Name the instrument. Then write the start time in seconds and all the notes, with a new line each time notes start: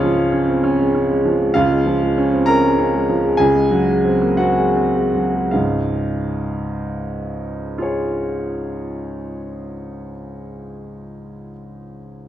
grand piano
Already playing: C#2 G#3 F4 C#5 F5
0.03 F3
0.17 G#3
0.32 C#4
0.48 C4
0.64 C#4
0.79 G#3
0.95 C#4
1.10 G#3
1.25 F3
1.41 G#3
1.54 C#2 F4 F5
1.71 G#3
1.86 F3
2.02 G#3
2.18 C#4
2.33 C4
2.46 C#4 A#4 A#5
2.64 G#3
2.79 C#4
2.94 G#3
3.09 F3
3.24 G#3
3.37 C#2 G#4 G#5
3.55 G#3
3.71 F#3
3.88 G#3
4.04 C4
4.22 A#3
4.37 C4 F#4 F#5
4.58 G#3
4.76 C4
4.95 G#3
5.15 F#3
5.34 G#3
5.51 C#2 G#2 F5
7.78 F4 G#4
7.82 C#5